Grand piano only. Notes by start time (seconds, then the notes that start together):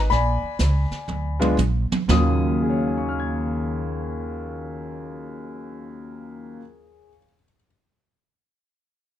0.10 D5 G#5 B5
1.40 G#3 B3 D4 F4
2.08 D#2 C#3 F#3 F4 D#6
2.63 G#4
2.70 C#5
2.78 F5
2.88 G#5
2.98 C#6
3.09 F6
3.20 G#6